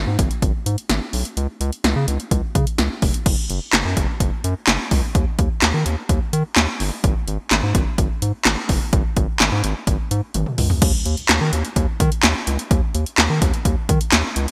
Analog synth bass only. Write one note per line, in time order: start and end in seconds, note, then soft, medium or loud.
0.07 0.17 G#2 loud
0.19 0.29 G#1 loud
0.42 0.53 G#1 loud
0.66 0.76 G#2 loud
0.90 1.00 G#1 loud
1.13 1.24 B1 medium
1.37 1.47 C#2 loud
1.61 1.71 C#2 loud
1.84 1.94 C#2 loud
1.96 2.06 C#3 loud
2.08 2.18 C#2 loud
2.31 2.42 C#2 loud
2.55 2.65 C#3 loud
2.79 2.89 C#2 loud
3.02 3.13 F1 loud
3.26 3.36 F#1 loud
3.49 3.60 F#1 loud
3.73 3.83 F#1 loud
3.85 3.95 F#2 loud
3.97 4.07 F#1 loud
4.20 4.31 F#1 loud
4.44 4.54 F#2 loud
4.68 4.78 F#1 loud
4.91 5.02 C#2 loud
5.15 5.25 D#2 loud
5.39 5.49 D#2 loud
5.62 5.72 D#2 loud
5.74 5.84 D#3 loud
5.86 5.96 D#2 loud
6.09 6.20 D#2 loud
6.33 6.43 D#3 loud
6.57 6.67 D#2 loud
6.80 6.91 G1 loud
7.04 7.14 G#1 loud
7.27 7.38 G#1 loud
7.51 7.61 G#1 loud
7.63 7.73 G#2 loud
7.75 7.85 G#1 loud
7.98 8.09 G#1 loud
8.22 8.32 G#2 loud
8.46 8.56 G#1 loud
8.69 8.80 F#1 loud
8.93 9.03 G#1 loud
9.17 9.27 G#1 loud
9.40 9.50 G#1 loud
9.52 9.62 G#2 loud
9.64 9.74 G#1 loud
9.87 9.98 G#1 loud
10.11 10.21 G#2 loud
10.35 10.45 G#1 loud
10.58 10.69 C#2 loud
10.82 10.92 D#2 loud
11.05 11.16 D#2 loud
11.29 11.39 D#2 loud
11.41 11.51 D#3 loud
11.53 11.63 D#2 loud
11.76 11.87 D#2 loud
12.00 12.10 D#3 loud
12.24 12.34 D#2 loud
12.47 12.57 C#2 loud
12.71 12.81 D#2 loud
12.94 13.05 D#2 loud
13.18 13.28 D#2 loud
13.30 13.40 D#3 loud
13.42 13.52 D#2 loud
13.65 13.76 D#2 loud
13.89 13.99 D#3 loud
14.13 14.23 D#2 loud
14.36 14.46 C#2 loud